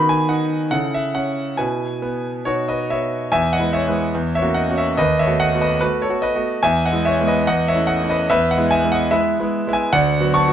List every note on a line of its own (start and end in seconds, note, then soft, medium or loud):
0.00 0.70 D#3 medium
0.00 0.69 B3 medium
0.00 0.69 F#4 medium
0.09 0.30 G#5 loud
0.29 0.71 D#4 medium
0.29 0.69 F#5 medium
0.71 1.56 C#3 medium
0.71 1.54 E4 medium
0.71 1.54 A4 soft
0.71 0.93 F#5 loud
0.94 1.16 E5 medium
1.15 1.58 C#4 medium
1.15 1.59 F#5 medium
1.57 2.43 B2 medium
1.57 2.41 E4 medium
1.57 2.42 B4 medium
1.57 2.45 G#5 medium
2.02 2.44 B3 medium
2.45 3.29 B2 medium
2.45 3.27 D#4 soft
2.45 2.66 F#4 medium
2.45 2.68 B4 soft
2.45 2.67 C#5 medium
2.68 2.89 B4 medium
2.68 2.90 D#5 medium
2.90 3.31 B3 medium
2.90 3.30 C#5 medium
2.90 3.31 E5 medium
3.32 3.59 E2 medium
3.32 3.51 E5 loud
3.32 3.52 G#5 loud
3.53 3.73 D#5 medium
3.53 3.73 F#5 loud
3.59 3.84 G#3 soft
3.59 3.84 E4 medium
3.59 3.85 B4 medium
3.73 4.32 C#5 medium
3.73 4.34 E5 medium
3.88 4.12 G#3 medium
3.88 4.12 E4 medium
3.88 4.13 B4 medium
4.15 4.41 E2 medium
4.35 4.55 C#5 medium
4.35 4.56 E5 loud
4.42 4.67 A#3 medium
4.42 4.67 C#4 medium
4.42 4.67 F#4 medium
4.54 4.75 D#5 medium
4.54 4.76 F#5 medium
4.70 4.95 A#3 medium
4.70 4.95 C#4 medium
4.70 4.95 F#4 medium
4.78 4.97 C#5 medium
4.78 4.98 E5 loud
4.97 5.25 D#2 medium
4.97 5.17 B4 medium
4.97 5.18 D#5 loud
5.19 5.39 C#5 medium
5.19 5.39 E5 loud
5.26 5.51 A3 medium
5.26 5.51 B3 medium
5.26 5.51 F#4 medium
5.40 5.59 D#5 medium
5.40 5.60 F#5 loud
5.54 5.78 A3 soft
5.54 5.79 B3 medium
5.54 5.79 F#4 medium
5.61 5.79 B4 medium
5.61 5.81 D#5 medium
5.81 6.06 A3 medium
5.81 6.06 B3 medium
5.81 6.01 F#4 medium
5.81 6.01 B4 medium
6.02 6.21 A4 medium
6.02 6.22 C#5 medium
6.09 6.33 A3 medium
6.09 6.34 B3 medium
6.09 6.34 F#4 medium
6.22 6.61 B4 medium
6.22 6.63 D#5 loud
6.35 6.60 A3 medium
6.35 6.60 B3 medium
6.35 6.61 F#4 medium
6.63 6.90 E2 medium
6.63 6.83 E5 medium
6.63 6.84 G#5 loud
6.86 7.04 D#5 medium
6.86 7.05 F#5 medium
6.92 7.16 G#3 medium
6.92 7.17 B3 medium
6.92 7.17 E4 medium
7.05 7.25 C#5 medium
7.05 7.26 E5 medium
7.20 7.44 G#3 medium
7.20 7.44 B3 medium
7.20 7.45 E4 medium
7.28 7.46 B4 medium
7.28 7.47 D#5 medium
7.47 7.74 E2 medium
7.47 7.67 D#5 medium
7.47 7.67 F#5 loud
7.68 7.87 C#5 medium
7.68 7.88 E5 loud
7.74 7.99 A3 medium
7.74 7.99 C#4 medium
7.74 8.00 E4 medium
7.87 8.07 D#5 medium
7.87 8.08 F#5 loud
8.02 8.27 A3 medium
8.02 8.27 C#4 medium
8.02 8.27 E4 medium
8.09 8.29 B4 medium
8.09 8.30 D#5 medium
8.30 8.56 E2 medium
8.30 8.49 B4 loud
8.30 8.50 E5 loud
8.51 8.70 D#5 medium
8.51 8.71 F#5 medium
8.57 8.81 G#3 medium
8.57 8.82 B3 medium
8.57 8.82 E4 medium
8.71 8.90 E5 medium
8.71 8.91 G#5 loud
8.84 9.09 G#3 medium
8.84 9.09 B3 medium
8.84 9.09 E4 medium
8.92 9.11 D#5 medium
8.92 9.12 F#5 loud
9.11 9.36 G#3 medium
9.11 9.36 B3 medium
9.11 9.36 E4 medium
9.11 9.69 B4 medium
9.11 9.72 E5 loud
9.39 9.64 G#3 medium
9.39 9.64 B3 medium
9.39 9.64 E4 medium
9.67 9.91 G#3 medium
9.67 9.92 B3 medium
9.67 9.92 E4 medium
9.73 9.92 E5 medium
9.73 9.93 G#5 loud
9.93 10.19 D2 medium
9.93 10.31 D5 medium
9.93 10.34 F#5 loud
10.20 10.45 F#3 medium
10.20 10.45 B3 medium
10.20 10.45 F#4 medium
10.34 10.53 A5 medium
10.34 10.53 C#6 loud
10.48 10.53 F#3 medium
10.48 10.53 B3 medium
10.48 10.53 F#4 medium